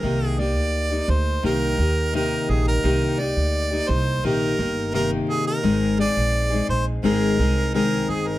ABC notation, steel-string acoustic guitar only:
X:1
M:4/4
L:1/16
Q:1/4=86
K:Cm
V:1 name="Steel-string acoustic guitar"
[C,E,B,EG]2 [B,EG]3 [B,EG]3 [C,E,B,EG]2 [E,B,EG]2 [C,E,B,EG]4 | [C,E,B,EG]2 [B,EG]3 [B,EG]3 [C,E,B,EG]2 [E,B,EG]2 [C,E,B,EG]4 | [A,,E,A,CEA]2 [A,CEA]3 [A,CEA]3 [A,,E,A,CEA]2 [A,CEA]2 [E,A,CEA]4 |]